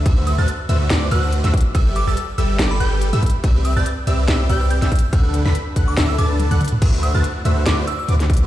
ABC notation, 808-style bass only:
X:1
M:4/4
L:1/16
Q:"Swing 16ths" 1/4=142
K:Dmix
V:1 name="808-style bass" clef=bass
D,,3 D,, z2 D,,2 D,,2 D,,3 D,, z2 | G,,,3 G,,, z2 G,,,2 G,,,2 G,,,3 G,, z2 | C,,3 C,, z2 C,,2 C,,2 C,,3 C,, z2 | D,,3 D,, z2 D,,2 D,,2 D,,3 D,, z2 |
D,,3 D,, z2 D,,2 D,,2 z2 D,,4 |]